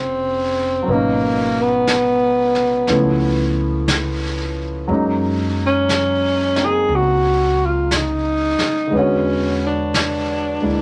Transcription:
Already playing: upright bass F1, grand piano C#3 F3 A#3 G#4 C5, tenor saxophone C4
0.83 grand piano F#3 A#4
0.88 upright bass G#1, grand piano B2 C#4, brush sweep
0.92 tenor saxophone A#3, grand piano D#4
1.62 tenor saxophone B3
1.87 brush sweep, snare, hi-hat pedal
2.55 snare
2.87 upright bass C#2, grand piano F3 A3 B3 C#4 E4, brush sweep, snare
3.88 brush sweep, snare, hi-hat pedal
4.88 upright bass F#2, grand piano F#3 G#3 A#3 C#4, brush sweep
4.93 grand piano D#4
5.66 tenor saxophone C#4
5.89 brush sweep, snare, hi-hat pedal
6.56 grand piano A#3 C4 D#4, snare
6.65 tenor saxophone G#4
6.89 upright bass C#2, brush sweep
6.96 tenor saxophone F#4
7.65 tenor saxophone F4
7.91 brush sweep, snare, hi-hat pedal
7.97 tenor saxophone D#4
8.59 muted upright bass stroke, snare
8.87 grand piano D3 G#3
8.92 upright bass E2, grand piano B3 C#5, brush sweep
8.97 tenor saxophone C#4, grand piano F#4
9.67 tenor saxophone D4
9.94 brush sweep, snare, hi-hat pedal
10.61 upright bass D2, grand piano G#3 A#3 E4

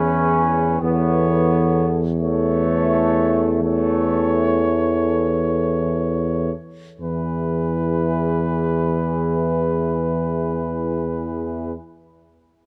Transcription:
Already playing: tuba E2, euphonium E3, trombone section C#4, french horn section G#4, cornet B4
0.81 tuba E2, euphonium E3, trombone section B3, french horn section A4, cornet C#5
2.18 euphonium E3, trombone section A3, french horn section A4, cornet C#5
3.62 euphonium E3, trombone section A3, french horn section A4, cornet C#5
6.99 tuba E2, trombone section E3, euphonium E3, french horn section G#4, cornet B4

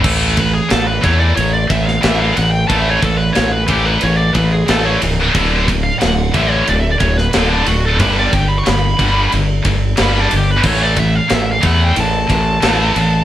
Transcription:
0.03 fingered electric bass A1, distorted electric guitar A2 E3 A3, kick, crash
0.37 distorted electric guitar A2 E3, lead electric guitar B4, kick, ride
0.54 lead electric guitar G#4
0.69 fingered electric bass A1, distorted electric guitar A2 E3, lead electric guitar A4, snare, ride
0.87 lead electric guitar B4
1.02 fingered electric bass E2, distorted electric guitar A2 E3 A3, lead electric guitar C#5, kick, ride
1.19 lead electric guitar D5
1.36 fingered electric bass A1, distorted electric guitar A2 E3, lead electric guitar C#5, ride
1.53 lead electric guitar D5
1.70 fingered electric bass A1, distorted electric guitar A2 E3, lead electric guitar E5, kick, ride
1.86 lead electric guitar F5, snare
2.02 fingered electric bass A1, distorted electric guitar A2 E3 A3, lead electric guitar E5, snare, ride
2.21 lead electric guitar F5
2.35 fingered electric bass A1, distorted electric guitar A2 E3, lead electric guitar F#5, ride
2.51 lead electric guitar G5
2.68 fingered electric bass A1, distorted electric guitar A2 E3 A3, lead electric guitar A5, kick, ride
2.78 lead electric guitar E5
2.90 lead electric guitar C#5
3.01 fingered electric bass A1, distorted electric guitar A2 E3, lead electric guitar A4, kick, ride
3.18 lead electric guitar B4
3.32 distorted electric guitar A2 E3, lead electric guitar C#5, snare, ride
3.37 fingered electric bass A1
3.52 lead electric guitar B4
3.68 fingered electric bass A1, distorted electric guitar A2 E3 A3, lead electric guitar G4, kick, ride
3.86 lead electric guitar B4
4.01 fingered electric bass A1, distorted electric guitar A2 E3, lead electric guitar C#5, ride
4.16 lead electric guitar D5
4.33 fingered electric bass A1, distorted electric guitar A2 E3, lead electric guitar B4, kick, ride
4.52 lead electric guitar G#4
4.68 fingered electric bass A1, distorted electric guitar A2 E3 A3, lead electric guitar A4, snare, ride
4.85 lead electric guitar C#5
5.01 fingered electric bass C#1, distorted electric guitar A2 E3, ride
5.34 fingered electric bass D1, distorted electric guitar D2 A2 D3, kick, ride
5.67 distorted electric guitar D2 A2, kick, ride
5.84 lead electric guitar F5
5.99 distorted electric guitar D2 A2, lead electric guitar F#5, snare, ride
6.03 fingered electric bass D1
6.34 fingered electric bass A1, distorted electric guitar D2 A2 D3, lead electric guitar E5, kick, ride
6.51 lead electric guitar C#5
6.67 fingered electric bass D1, distorted electric guitar D2 A2, lead electric guitar D5, ride
6.80 lead electric guitar E5
6.91 lead electric guitar D5
7.00 fingered electric bass D1, distorted electric guitar D2 A2, lead electric guitar C#5, kick, ride
7.17 lead electric guitar B4, snare
7.33 fingered electric bass D1, distorted electric guitar D2 A2 D3, lead electric guitar A4, snare, ride
7.49 lead electric guitar D4
7.66 fingered electric bass D1, distorted electric guitar D2 A2, lead electric guitar F#4, ride
7.85 lead electric guitar A4
7.98 fingered electric bass G1, distorted electric guitar G2 D3 G3, lead electric guitar B4, kick, ride
8.19 lead electric guitar D5
8.32 fingered electric bass G1, distorted electric guitar G2 D3, lead electric guitar G5, kick, ride
8.49 lead electric guitar B5
8.58 lead electric guitar C#6
8.65 fingered electric bass G1, distorted electric guitar G2 D3, snare, ride
8.69 lead electric guitar B5
8.99 fingered electric bass G1, distorted electric guitar G2 D3 G3, kick, ride
9.32 fingered electric bass G1, distorted electric guitar G2 D3, ride
9.65 fingered electric bass G1, distorted electric guitar G2 D3, kick, ride
9.97 fingered electric bass G1, distorted electric guitar G2 D3 G3, snare, ride
10.02 lead electric guitar B4
10.18 lead electric guitar D4
10.31 fingered electric bass G1, distorted electric guitar G2 D3, ride
10.37 lead electric guitar G4
10.51 lead electric guitar B4
10.63 fingered electric bass A1, distorted electric guitar A2 E3 A3, kick, crash
10.68 lead electric guitar C#5
10.83 lead electric guitar D5
10.96 distorted electric guitar A2 E3, lead electric guitar E5, kick, ride
11.15 lead electric guitar F5
11.29 fingered electric bass A1, distorted electric guitar A2 E3, snare, ride
11.34 lead electric guitar E5
11.52 lead electric guitar F5
11.62 fingered electric bass E2, distorted electric guitar A2 E3 A3, kick, ride
11.67 lead electric guitar F#5
11.84 lead electric guitar G5
11.96 fingered electric bass A1, distorted electric guitar A2 E3, ride
12.00 lead electric guitar A5
12.29 fingered electric bass A1, distorted electric guitar A2 E3, kick, ride
12.62 fingered electric bass A1, distorted electric guitar A2 E3 A3, snare, ride
12.96 fingered electric bass A1, distorted electric guitar A2 E3, ride

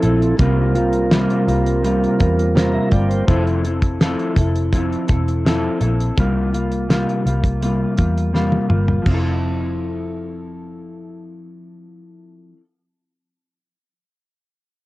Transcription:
Already playing: tonewheel organ F3 C4 E4 A4
0.02 picked electric bass A#1, clean electric guitar C4 E4 A4, closed hi-hat
0.22 closed hi-hat
0.37 picked electric bass C2, clean electric guitar C3 G3 A#3 F4, tonewheel organ G3 C4 F4, kick, closed hi-hat
0.42 tonewheel organ A#4
0.74 clean electric guitar G3 A#3 F4, closed hi-hat
0.93 closed hi-hat
1.10 clean electric guitar C3 G3 A#3 F4, snare, closed hi-hat
1.30 closed hi-hat
1.47 picked electric bass C2, clean electric guitar G3 A#3 F4, closed hi-hat
1.66 closed hi-hat
1.82 clean electric guitar C3 G3 A#3 F4, closed hi-hat
2.04 closed hi-hat
2.19 picked electric bass E2, clean electric guitar G3 A#3 F4, kick, closed hi-hat
2.39 closed hi-hat
2.55 clean electric guitar C3 G3 A#3 F4, tonewheel organ C5 A#5, snare, closed hi-hat
2.74 tonewheel organ E5
2.91 picked electric bass G1, clean electric guitar G3 A#3 F4, tonewheel organ D5 G5, kick, closed hi-hat
3.10 tonewheel organ C5, closed hi-hat
3.27 picked electric bass F1, clean electric guitar F3 C4 E4 A4, kick, closed hi-hat
3.47 closed hi-hat
3.64 clean electric guitar C4 E4 A4, closed hi-hat
3.82 kick, closed hi-hat
4.01 clean electric guitar F3 C4 E4 A4, snare, closed hi-hat
4.19 closed hi-hat
4.36 picked electric bass F1, clean electric guitar C4 E4 A4, kick, closed hi-hat
4.55 closed hi-hat
4.73 clean electric guitar F3 C4 E4 A4, kick, closed hi-hat
4.92 closed hi-hat
5.08 picked electric bass E1, clean electric guitar C4 E4 A4, kick, closed hi-hat
5.28 closed hi-hat
5.45 clean electric guitar F3 C4 E4 A4, snare, closed hi-hat
5.81 picked electric bass A#1, clean electric guitar C4 E4 A4, closed hi-hat
6.00 closed hi-hat
6.17 picked electric bass C2, clean electric guitar C3 G3 A#3 F4, kick, closed hi-hat
6.52 clean electric guitar G3 A#3 F4, closed hi-hat
6.71 closed hi-hat
6.89 clean electric guitar C3 G3 A#3 F4, snare, closed hi-hat
7.09 closed hi-hat
7.25 picked electric bass C2, clean electric guitar G3 A#3 F4, closed hi-hat
7.44 kick, closed hi-hat
7.61 clean electric guitar C3 G3 A#3 F4, closed hi-hat
7.97 picked electric bass E2, clean electric guitar G3 A#3 F4, kick, closed hi-hat
8.18 closed hi-hat
8.33 clean electric guitar C3 G3 A#3 F4, snare
8.52 high tom
8.69 picked electric bass G1, clean electric guitar G3 A#3 F4, mid tom
8.88 floor tom
9.02 picked electric bass F1, clean electric guitar F3, crash
9.06 clean electric guitar C4, kick
9.11 clean electric guitar E4 A4

